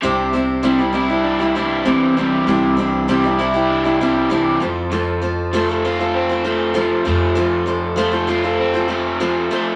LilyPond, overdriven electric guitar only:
\new Staff \with { instrumentName = "Overdriven electric guitar" } { \clef bass \time 4/4 \key c \major \tempo 4 = 98 c4 g8 e'8 d'8 g8 e8 g8 | c4 g8 e'8 d'8 g8 e8 f,8 | f,4 a8 f'8 c'8 a8 f8 a8 | f,4 a8 f'8 c'8 a8 f8 a8 | }